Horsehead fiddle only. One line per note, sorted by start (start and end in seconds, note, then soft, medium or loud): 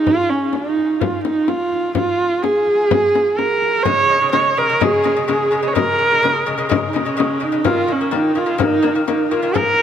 0.07 0.31 F4 loud
0.30 0.56 C#4 medium
0.55 1.02 D#4 medium
1.00 1.24 F4 medium
1.24 1.50 D#4 medium
1.49 1.96 F4 medium
1.96 2.44 F4 medium
2.43 3.39 G#4 medium
3.38 3.85 A#4 medium
3.83 4.31 C#5 loud
4.32 4.59 C#5 medium
4.58 4.85 A#4 medium
4.83 5.26 G#4 medium
5.27 5.69 G#4 medium
5.67 5.75 C#5 medium
5.73 6.69 A#4 loud
6.87 6.99 D#4 medium
6.97 7.45 C#4 medium
7.44 7.67 D#4 medium
7.66 7.93 F4 loud
7.92 8.17 C#4 medium
8.16 8.39 D#4 medium
8.37 8.61 F4 medium
8.63 9.06 D#4 medium
9.09 9.33 D#4 medium
9.31 9.58 F4 medium
9.56 9.82 A#4 loud